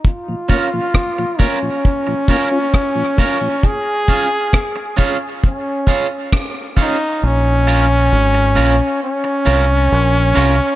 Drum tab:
HH |-x-x-x-o|px-x-x-o|--------|
SD |--r---r-|--r---r-|--------|
BD |oooooooo|oooooooo|--------|